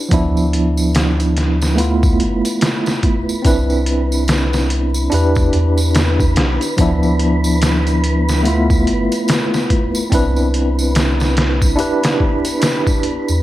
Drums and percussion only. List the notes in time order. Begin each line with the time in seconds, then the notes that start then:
0.11 kick, closed hi-hat, tambourine
0.37 tambourine
0.53 closed hi-hat
0.77 tambourine
0.95 snare, closed hi-hat, tambourine
1.20 closed hi-hat, tambourine
1.37 snare, closed hi-hat
1.61 snare, tambourine
1.78 closed hi-hat, tambourine
2.03 kick, tambourine
2.20 closed hi-hat
2.45 closed hi-hat, tambourine
2.61 snare, closed hi-hat, tambourine
2.86 snare, tambourine
3.03 kick, closed hi-hat
3.29 tambourine
3.45 kick, closed hi-hat, tambourine
3.70 tambourine
3.86 closed hi-hat
4.12 tambourine
4.28 snare, closed hi-hat, tambourine
4.53 snare, tambourine
4.70 closed hi-hat
4.94 tambourine
5.12 closed hi-hat, tambourine
5.35 kick, tambourine
5.53 closed hi-hat
5.78 tambourine
5.95 snare, closed hi-hat, tambourine
6.20 kick, tambourine
6.36 snare, closed hi-hat
6.61 closed hi-hat, tambourine
6.78 kick, closed hi-hat, tambourine
7.03 tambourine
7.19 closed hi-hat
7.44 tambourine
7.62 snare, closed hi-hat, tambourine
7.87 closed hi-hat, tambourine
8.04 closed hi-hat
8.29 snare, tambourine
8.45 closed hi-hat, tambourine
8.70 kick, tambourine
8.87 closed hi-hat
9.12 closed hi-hat, tambourine
9.28 snare, closed hi-hat, tambourine
9.54 snare, tambourine
9.70 kick, closed hi-hat
9.95 tambourine
10.12 kick, closed hi-hat, tambourine
10.36 tambourine
10.54 closed hi-hat
10.79 tambourine
10.95 snare, closed hi-hat, tambourine
11.20 snare, tambourine
11.37 snare, closed hi-hat
11.62 kick, tambourine
11.79 closed hi-hat, tambourine
12.03 snare, closed hi-hat, tambourine
12.20 kick
12.45 closed hi-hat, tambourine
12.62 snare, closed hi-hat, tambourine
12.87 kick, tambourine
13.03 closed hi-hat
13.28 tambourine